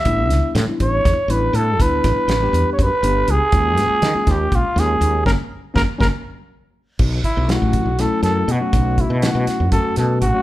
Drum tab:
CC |-------|-------|-------|-------|
HH |xxxxxxx|xxxxxxx|xxxxxxx|-------|
SD |-oo-o--|-oo----|-ooo-o-|o-oo---|
BD |o--oo--|oo--o--|o--oo--|o-oo---|

CC |x------|-------|
HH |-xxxxxx|xxxxxxx|
SD |--o-oo-|--oo-o-|
BD |oo-o---|oo--o--|